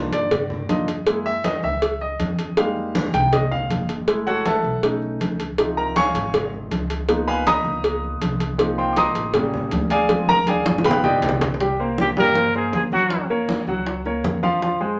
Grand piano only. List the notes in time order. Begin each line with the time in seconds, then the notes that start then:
Already playing: A#3 D4 D#4 F4
0.13 D5
0.69 A#3 D4 D#4 F4 D#5
1.07 G#3 A#3 E4
1.26 E5
1.45 D#5
1.64 E5
2.01 D#5
2.57 G3 G#3 A#3 D#4 F5
3.14 G5
3.33 D#5
3.51 F5
4.07 G#3 A3 E4
4.27 F#4 A4 C#5 F#5
4.46 A4 E5 F#5 A5
4.83 A3 C#4 D#4
5.58 C3 F3 D#4
5.77 A#4 A#5
5.96 C#5 F5 G#5 C#6
7.08 F3 A#3 B3 D#4
7.28 B4 F5 G#5 B5
7.47 D#5 A#5 B5 D#6
8.58 F3 A#3 C4 D#4
8.78 C5 F5 G5 C6
8.93 D6
8.97 D#5 A#5 C6 D#6
9.34 G3 A#3 C#4
9.91 G#4 D5 F5 G#5
10.09 F3 G#3 C4
10.29 A#4 A#5
10.48 G#4 D5 F5 G#5
10.84 D#3 F3 B3 B4 F5 G5 B5
11.04 G4 D5 D#5 G5
11.61 G3 G4 G5
11.80 A#3 A#4 C5
12.17 G3 G4 G5
12.36 A#3 A#4 C5
12.55 A#3 A#4 C5
12.93 F#3 F#4 F#5
13.30 A#3 A#4 C#5
13.68 F#3 F#4 F#5
14.06 A#3 A#4 C#5
14.43 F3 F4 F5
14.62 F3 F4 F5
14.81 G#3 G#4 C5